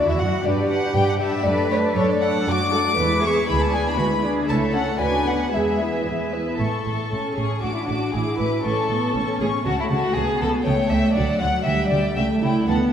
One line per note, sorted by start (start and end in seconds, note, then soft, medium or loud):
0.00 0.45 F#4 soft
0.07 0.20 E2 soft
0.07 0.12 E4 soft
0.07 0.20 E4 soft
0.07 0.21 E5 medium
0.20 0.28 F#2 soft
0.20 0.45 F#4 medium
0.20 0.45 F#4 soft
0.20 0.45 F#5 medium
0.45 0.87 G2 medium
0.45 0.70 D4 soft
0.45 1.45 G4 medium
0.45 0.70 G4 soft
0.45 0.69 B4 soft
0.45 0.71 D5 medium
0.45 0.69 D5 soft
0.70 0.95 D4 soft
0.70 0.95 G4 soft
0.70 0.94 B4 soft
0.70 0.95 D5 soft
0.70 0.95 F#5 medium
0.95 1.37 G2 medium
0.95 1.20 D4 soft
0.95 1.19 G4 soft
0.95 1.20 B4 soft
0.95 1.19 D5 soft
0.95 1.08 G5 medium
1.09 1.14 F#5 medium
1.20 1.44 D4 soft
1.20 1.45 G4 soft
1.20 1.45 B4 soft
1.20 1.44 D5 soft
1.20 1.45 E5 medium
1.45 1.87 F#2 medium
1.45 1.70 A3 soft
1.45 1.70 D4 soft
1.45 1.69 A4 soft
1.45 1.94 B4 medium
1.45 1.70 D5 medium
1.45 1.69 D5 soft
1.70 1.94 A3 soft
1.70 1.94 D4 soft
1.70 1.94 A4 soft
1.70 1.78 C#5 medium
1.70 1.95 D5 soft
1.95 2.39 F#2 medium
1.95 2.20 A3 soft
1.95 2.19 D4 soft
1.95 2.47 A4 medium
1.95 2.21 A4 soft
1.95 2.08 C#5 medium
1.95 2.20 D5 soft
2.09 2.22 D5 medium
2.20 2.46 A3 soft
2.20 2.46 D4 soft
2.20 2.47 A4 soft
2.20 2.47 D5 soft
2.20 2.47 F#5 medium
2.47 2.89 F#2 medium
2.47 2.71 F#3 soft
2.47 2.71 D4 soft
2.47 2.72 F#4 medium
2.47 2.71 F#4 soft
2.47 2.71 D5 soft
2.47 3.22 D6 medium
2.72 2.98 A3 soft
2.72 2.98 F#4 soft
2.72 2.97 A4 medium
2.72 2.98 A4 soft
2.72 2.98 F#5 soft
2.97 3.39 E2 medium
2.97 3.21 G#3 soft
2.97 3.21 E4 soft
2.97 3.22 B4 medium
2.97 3.21 B4 soft
3.22 3.48 B3 soft
3.22 3.46 G#4 medium
3.22 3.48 G#4 soft
3.22 3.48 E5 soft
3.22 3.48 C#6 medium
3.48 3.89 D2 medium
3.48 3.71 G#3 soft
3.48 3.71 E4 soft
3.48 3.97 G#4 medium
3.48 3.71 B4 soft
3.48 3.60 B5 medium
3.61 3.73 A5 medium
3.72 3.98 B3 soft
3.72 3.98 D4 soft
3.72 3.98 G#4 soft
3.72 3.98 D5 soft
3.72 3.85 G#5 medium
3.86 4.23 B5 medium
3.98 4.40 D2 medium
3.98 4.23 G#3 soft
3.98 4.23 E4 soft
3.98 4.06 F#4 medium
3.98 4.23 B4 soft
4.22 4.49 B3 soft
4.22 4.49 D4 soft
4.22 4.48 G#4 soft
4.22 4.48 G#4 medium
4.22 4.48 D5 soft
4.48 4.92 C#2 medium
4.48 4.72 A3 soft
4.48 4.73 E4 soft
4.48 5.00 A4 medium
4.48 4.72 C#5 soft
4.48 4.72 E5 soft
4.48 4.57 A5 medium
4.74 5.00 C#4 soft
4.74 5.00 A4 soft
4.74 5.00 C#5 soft
4.74 5.00 F#5 medium
4.99 5.44 D2 medium
4.99 5.25 D4 soft
4.99 5.24 F#4 soft
4.99 5.52 B4 medium
4.99 5.24 D5 soft
4.99 5.26 G#5 medium
5.26 5.53 B3 soft
5.26 5.53 D4 soft
5.26 5.52 B4 soft
5.26 5.52 F#5 soft
5.26 5.52 F#5 medium
5.52 5.97 E2 soft
5.52 5.78 G#3 soft
5.52 6.31 G#4 soft
5.52 5.78 G#4 soft
5.52 5.78 B4 soft
5.52 5.78 E5 soft
5.52 6.07 E5 soft
5.79 6.06 B3 soft
5.79 6.06 E4 soft
5.79 6.05 B4 soft
5.79 6.05 E5 soft
6.06 6.51 E2 soft
6.06 6.33 G#3 soft
6.06 6.33 G#4 soft
6.06 6.31 B4 soft
6.06 6.31 E5 soft
6.33 6.60 B3 soft
6.33 6.60 E4 soft
6.33 6.59 B4 soft
6.33 6.59 E5 soft
6.59 6.68 A1 soft
6.59 6.67 A2 soft
6.59 7.33 A4 medium
6.59 6.84 C#6 soft
6.85 6.94 A1 soft
6.85 6.93 A2 soft
6.85 7.10 C#6 soft
7.11 7.20 A1 soft
7.11 7.20 A2 soft
7.11 7.59 C#4 soft
7.11 7.36 C#6 soft
7.37 7.46 A1 soft
7.37 7.45 A2 soft
7.37 7.63 G#4 soft
7.37 7.63 C#6 soft
7.62 7.71 A1 soft
7.62 7.71 A2 soft
7.62 8.15 D4 soft
7.62 7.76 F#4 medium
7.62 7.88 D6 soft
7.76 7.89 E4 soft
7.88 7.96 A1 soft
7.88 7.97 A2 soft
7.88 8.14 F#4 soft
7.88 8.13 D6 soft
8.13 8.22 A1 soft
8.13 8.23 A2 soft
8.13 8.64 E4 soft
8.13 8.39 G#4 medium
8.13 8.39 D6 soft
8.38 8.48 A1 soft
8.38 8.48 A2 soft
8.38 8.64 B4 medium
8.38 8.65 D6 soft
8.65 8.73 A1 soft
8.65 8.73 A2 soft
8.65 8.91 C#4 soft
8.65 9.39 A4 medium
8.65 8.90 C#6 soft
8.90 8.98 A1 soft
8.90 8.98 A2 soft
8.90 9.15 B3 soft
8.90 9.15 C#6 soft
9.15 9.23 A1 soft
9.15 9.24 A2 soft
9.15 9.66 C#4 medium
9.15 9.39 C#6 soft
9.41 9.49 A1 soft
9.41 9.49 A2 soft
9.41 9.49 G#4 medium
9.41 9.66 C#6 soft
9.66 9.74 C#2 medium
9.66 9.74 C#3 medium
9.66 10.16 A3 medium
9.66 9.78 F#4 medium
9.66 9.90 A5 soft
9.80 9.85 E4 medium
9.90 9.98 C#2 soft
9.90 9.99 C#3 medium
9.90 10.16 F#4 medium
9.90 10.15 A5 soft
10.15 10.24 C#2 medium
10.15 10.24 C#3 medium
10.15 10.66 B3 medium
10.15 10.41 G#4 medium
10.15 10.40 A5 soft
10.41 10.49 C#2 soft
10.41 10.49 C#3 medium
10.41 10.49 A4 medium
10.41 10.66 A5 soft
10.65 10.75 C#2 medium
10.65 10.74 C#3 medium
10.65 11.15 A3 medium
10.65 10.90 C#5 medium
10.65 10.90 G5 medium
10.91 11.00 C#2 medium
10.91 10.99 C#3 medium
10.91 11.16 E5 medium
10.91 11.16 G5 soft
11.15 11.25 D2 medium
11.15 11.24 D3 medium
11.15 11.66 F#3 medium
11.15 11.40 D5 medium
11.15 11.40 F#5 soft
11.41 11.49 D2 medium
11.41 11.49 D3 medium
11.41 11.65 F#5 soft
11.41 11.66 F#5 medium
11.66 11.75 D2 medium
11.66 11.74 D3 medium
11.66 12.16 G3 medium
11.66 11.91 E5 medium
11.66 11.90 G5 soft
11.91 12.00 D2 medium
11.91 11.99 D3 soft
11.91 12.16 D5 medium
11.91 12.15 G5 soft
12.17 12.25 C#2 medium
12.17 12.25 C#3 medium
12.17 12.68 A3 medium
12.17 12.25 E5 medium
12.17 12.41 G5 soft
12.42 12.51 C#2 soft
12.42 12.50 C#3 medium
12.42 12.67 E4 medium
12.42 12.67 G5 soft
12.68 12.76 D2 medium
12.68 12.76 D3 medium
12.68 12.93 B3 medium
12.68 12.76 A4 medium
12.68 12.92 F#5 soft